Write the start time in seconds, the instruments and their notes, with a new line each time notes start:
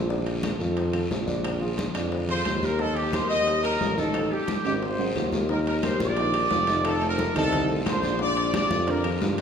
Already playing: tuba A#1
0.09 grand piano D3 D4 D5, high bongo, high conga, long guiro
0.27 high bongo, high conga, high timbale
0.43 grand piano F3 F4 A4, high bongo, high conga, high timbale, low timbale, short guiro, claves
0.59 tuba F2, grand piano F3 F4 A4, high bongo, high conga, short guiro
0.77 high bongo, high conga, high timbale, long guiro
0.93 grand piano F3 F4 A4, high bongo, high conga, high timbale, claves
1.10 tuba A#1, high bongo, low bongo, high conga, low timbale, short guiro
1.26 grand piano D3 D4 D5, high conga, short guiro
1.44 high bongo, high conga, high timbale, long guiro, claves
1.60 grand piano F3 F4 G#4, high bongo, high conga
1.78 high bongo, high conga, high timbale, low timbale, short guiro
1.94 tuba F2, grand piano D3 D4 D5, high bongo, high timbale, short guiro, claves
2.12 high bongo, high conga, long guiro
2.28 grand piano F3 F4 G#4, horn section C5, high bongo, high conga, high timbale
2.45 tuba D#2, high bongo, low bongo, high conga, high timbale, low timbale, short guiro, claves
2.62 grand piano G3 G4 A#4, horn section A#4, high conga, short guiro
2.79 grand piano D#3 D#4 D#5, horn section A4, high bongo, high conga, long guiro
2.96 horn section G4, high bongo, high conga, high timbale
3.13 grand piano G3 G4 A#4, horn section C5, high bongo, high conga, high timbale, low timbale, short guiro, claves
3.29 tuba D#2, grand piano G3 G4 A#4, horn section D#5, high bongo, high conga, short guiro
3.47 high bongo, high conga, high timbale, long guiro
3.63 grand piano G3 G4 A#4, horn section A#4, high bongo, high conga, high timbale, claves
3.81 tuba A1, high bongo, low bongo, high conga, low timbale, short guiro
3.97 grand piano D#3 D#4 D#5, horn section A4, high conga, short guiro
4.14 high bongo, high conga, high timbale, long guiro, claves
4.31 grand piano G3 G4 A4, horn section G4, high bongo, high conga
4.48 high bongo, high conga, high timbale, low timbale, short guiro
4.64 tuba G#1, grand piano D#3 D#4 D#5, horn section G4, high bongo, high timbale, short guiro, claves
4.82 horn section C5, high bongo, high conga, long guiro
4.98 grand piano F#3 F#4 G#4, high bongo, high conga, high timbale
5.15 tuba D#2, high bongo, low bongo, high conga, low timbale, short guiro, claves
5.32 grand piano G3 G4 A#4, high conga, low timbale, short guiro
5.49 grand piano D#3 D#4 D#5, horn section A#4, high bongo, high conga, long guiro
5.66 horn section A#4, high bongo, high conga, high timbale
5.83 grand piano G3 G4 A#4, horn section C5, high bongo, high conga, high timbale, low timbale, short guiro, claves
6.00 tuba A#1, high conga, short guiro
6.06 horn section D5
6.17 grand piano D#3 D#4 D#5, high bongo, high conga, high timbale, long guiro
6.34 grand piano G3 G4 A#4, high bongo, high conga, high timbale, claves
6.50 tuba F1, high bongo, low bongo, high conga, low timbale, short guiro
6.67 grand piano D#3 D#4 D#5, high bongo, high conga, high timbale, short guiro
6.85 horn section A4, high bongo, high conga, high timbale, long guiro, claves
7.01 grand piano A3 A4 C5, high conga, high timbale
7.08 horn section A#4
7.18 grand piano A3 A4 C5, high bongo, high conga, low timbale, short guiro
7.34 tuba C2, grand piano D#3 D#4 D#5, horn section A4, high bongo, high conga, low conga, high timbale, short guiro, claves
7.52 high bongo, high conga, low conga, high timbale, long guiro
7.69 grand piano A3 A4 C5, high bongo, high conga
7.86 tuba A#1, horn section C5, high bongo, low bongo, high conga, high timbale, low timbale, short guiro, claves
8.02 grand piano D3 D4 D5, high bongo, high conga, short guiro
8.19 grand piano D3 D4 D5, horn section D5, high bongo, high conga
8.37 high bongo, high conga, high timbale
8.53 grand piano F3 F4 G4, horn section D5, high bongo, high conga, high timbale, low timbale, short guiro, claves
8.71 tuba F2, high conga, short guiro
8.87 grand piano D3 D4 D5, horn section A#4, high bongo, high conga, high timbale, long guiro
9.04 grand piano F3 F4 G4, high bongo, high conga, high timbale, claves
9.21 tuba G2, high bongo, low bongo, high conga, low timbale, short guiro
9.38 high timbale